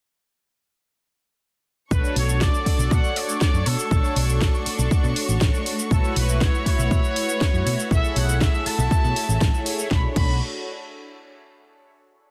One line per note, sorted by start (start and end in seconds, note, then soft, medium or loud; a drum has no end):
1.91 1.99 B1 loud
1.91 9.87 A3 medium
1.91 2.26 D4 medium
1.91 5.63 D4 medium
1.91 2.26 F#4 medium
1.91 2.26 A4 medium
1.91 2.14 B4 loud
1.91 2.26 C#5 loud
1.91 7.62 C#6 medium
1.91 kick loud
1.91 shaker medium
2.05 shaker soft
2.16 2.47 B1 loud
2.16 2.40 C#5 loud
2.16 open hi-hat loud
2.28 2.63 D4 medium
2.28 2.63 F#4 medium
2.28 2.63 A4 medium
2.28 2.64 D5 medium
2.28 shaker medium
2.41 2.65 D5 loud
2.41 kick loud
2.41 snare loud
2.41 shaker medium
2.54 shaker soft
2.66 3.01 D4 medium
2.66 3.01 F#4 medium
2.66 3.01 A4 medium
2.66 2.90 D5 loud
2.66 3.01 D5 loud
2.66 kick medium
2.66 open hi-hat loud
2.79 2.87 B1 loud
2.79 shaker medium
2.91 2.99 B2 loud
2.91 3.16 F#5 loud
2.91 kick loud
2.91 shaker medium
3.04 3.26 D4 medium
3.04 3.26 F#4 medium
3.04 3.26 A4 medium
3.04 3.26 C#5 medium
3.04 shaker soft
3.16 3.41 D5 loud
3.16 open hi-hat loud
3.29 3.51 D4 medium
3.29 3.51 F#4 medium
3.29 3.51 A4 medium
3.29 3.51 C#5 medium
3.29 shaker medium
3.41 3.65 D5 loud
3.41 kick loud
3.41 snare loud
3.41 shaker medium
3.54 3.62 F#2 medium
3.54 3.66 D4 medium
3.54 3.66 F#4 medium
3.54 3.66 A4 medium
3.54 3.66 C#5 medium
3.54 shaker soft
3.66 3.74 B2 medium
3.66 4.66 A4 medium
3.66 open hi-hat loud
3.79 shaker medium
3.91 3.99 B1 loud
3.91 4.26 D4 loud
3.91 4.26 F#4 medium
3.91 4.26 A4 medium
3.91 4.26 C#5 loud
3.91 kick loud
3.91 shaker medium
4.04 shaker soft
4.16 4.47 B1 loud
4.16 open hi-hat loud
4.29 4.63 D4 medium
4.29 4.63 F#4 medium
4.29 4.64 A4 medium
4.29 4.64 D5 medium
4.29 shaker medium
4.41 kick loud
4.41 snare loud
4.41 shaker medium
4.54 shaker soft
4.66 5.01 D4 loud
4.66 5.01 F#4 medium
4.66 5.01 A4 medium
4.66 5.01 D5 loud
4.66 muted picked electric bass stroke soft
4.66 open hi-hat loud
4.79 4.87 B1 medium
4.79 shaker medium
4.91 kick loud
4.91 shaker medium
5.03 5.12 B2 medium
5.03 5.25 D4 medium
5.03 5.26 F#4 medium
5.03 5.26 A4 medium
5.03 5.26 C#5 medium
5.03 shaker soft
5.16 open hi-hat loud
5.28 5.37 A1 medium
5.28 5.50 D4 medium
5.28 5.51 F#4 medium
5.28 5.51 A4 medium
5.28 5.51 C#5 medium
5.28 shaker medium
5.41 5.49 A1 medium
5.41 kick loud
5.41 snare loud
5.41 shaker medium
5.53 5.64 D4 medium
5.53 5.64 F#4 medium
5.53 5.65 A4 medium
5.53 5.65 C#5 medium
5.53 shaker soft
5.66 9.87 F#4 medium
5.66 open hi-hat loud
5.79 shaker medium
5.90 5.99 B1 loud
5.90 6.25 E4 medium
5.90 6.25 F#4 medium
5.90 6.15 A4 medium
5.90 6.25 B4 medium
5.90 6.26 C#5 loud
5.90 kick loud
5.90 shaker medium
6.04 shaker soft
6.16 6.47 B1 loud
6.16 6.40 B4 medium
6.16 open hi-hat loud
6.28 6.63 E4 medium
6.28 6.63 F#4 medium
6.28 6.63 B4 medium
6.28 6.63 E5 medium
6.28 shaker medium
6.41 6.65 C#5 loud
6.41 kick loud
6.41 snare loud
6.41 shaker medium
6.55 shaker soft
6.65 7.00 E4 loud
6.65 7.01 F#4 medium
6.65 7.01 B4 medium
6.65 7.87 C#5 loud
6.65 7.01 E5 loud
6.65 kick medium
6.65 open hi-hat loud
6.79 6.87 B1 medium
6.79 shaker medium
6.91 6.99 B2 loud
6.91 kick loud
6.91 shaker medium
7.03 7.25 E4 medium
7.03 7.25 F#4 medium
7.03 7.26 B4 medium
7.03 7.26 C#5 loud
7.03 shaker soft
7.16 open hi-hat loud
7.28 7.50 E4 medium
7.28 7.51 F#4 medium
7.28 7.51 B4 medium
7.28 7.51 C#5 medium
7.28 shaker medium
7.41 kick loud
7.41 snare loud
7.41 shaker medium
7.53 7.62 F#2 medium
7.53 7.65 E4 medium
7.53 7.65 F#4 medium
7.53 7.65 B4 medium
7.53 7.65 C#5 loud
7.53 shaker soft
7.66 7.74 B2 loud
7.66 9.89 E5 medium
7.66 open hi-hat loud
7.80 shaker medium
7.91 7.99 B1 loud
7.91 8.25 E4 loud
7.91 8.26 G#4 medium
7.91 8.26 A4 medium
7.91 8.26 C#5 loud
7.91 8.15 E5 loud
7.91 kick loud
7.91 shaker medium
8.04 shaker soft
8.16 8.47 B1 loud
8.16 8.40 F#5 loud
8.16 open hi-hat loud
8.28 8.63 E4 medium
8.28 8.63 G#4 medium
8.28 8.63 A4 medium
8.28 8.63 E5 medium
8.28 shaker medium
8.41 8.66 E5 loud
8.41 kick loud
8.41 snare loud
8.41 shaker medium
8.54 shaker soft
8.66 9.01 E4 medium
8.66 9.01 F#4 medium
8.66 9.01 A4 medium
8.66 9.01 E5 loud
8.66 9.66 A5 loud
8.66 muted picked electric bass stroke soft
8.66 open hi-hat loud
8.78 8.87 B1 loud
8.78 shaker medium
8.91 kick loud
8.91 shaker medium
9.03 9.12 B2 medium
9.03 9.13 E4 medium
9.03 9.13 G#4 medium
9.03 9.14 A4 medium
9.03 9.14 C#5 loud
9.03 shaker soft
9.16 9.23 E4 loud
9.16 9.24 G#4 medium
9.16 9.24 A4 medium
9.16 9.24 C#5 loud
9.16 open hi-hat loud
9.29 9.37 A1 medium
9.29 shaker medium
9.41 kick loud
9.41 snare loud
9.41 shaker medium
9.53 9.88 E4 loud
9.53 9.88 G#4 medium
9.53 9.88 A4 medium
9.53 9.89 C#5 loud
9.53 shaker soft
9.66 open hi-hat loud
9.79 shaker medium
9.90 10.05 B1 loud
9.90 10.14 A3 medium
9.90 10.04 D4 medium
9.90 10.14 D4 medium
9.90 10.05 F#4 medium
9.90 10.05 A4 medium
9.90 10.14 C#5 medium
9.90 10.06 C#5 loud
9.90 10.05 B5 medium
9.90 kick loud
9.90 snare medium
10.14 10.39 B1 loud
10.14 10.34 D4 medium
10.14 10.34 F#4 medium
10.14 10.35 A4 medium
10.14 10.35 C#5 loud
10.14 10.40 B5 medium
10.14 kick loud
10.14 crash medium